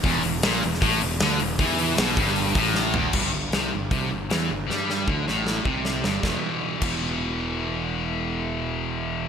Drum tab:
CC |----------------|----------------|x---------------|----------------|
HH |o-o-o-o-o-o-o-o-|o-o-o-o-o-o-----|----o---o---o---|----------------|
SD |----o--o----o---|----o--o----o---|----o-------o---|o-o---o-o---o-o-|
FT |----------------|--------------o-|----------------|----------------|
BD |o-------o-------|o-----o---o-----|o-------o-------|----o-----o-----|

CC |------x---------|----------------|
HH |----------------|----------------|
SD |o---------------|----------------|
FT |----------------|----------------|
BD |o-----o---------|----------------|